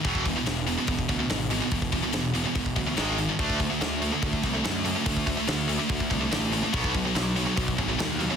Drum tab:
HH |o-o-o-o-o-o-o-o-|o-o-o-o-o-o-o-o-|o-o-o-o-o-o-o-o-|o-o-o-o-o-o-o-o-|
SD |----o-------o---|----o-------o---|----o-------o---|----o-------o---|
BD |ooo-----ooo-----|ooo-----ooo-----|ooo-----ooo-----|ooo-----ooo-----|

HH |o-o-o-o-o-o-o-o-|
SD |----o-------o---|
BD |ooo-----ooo-----|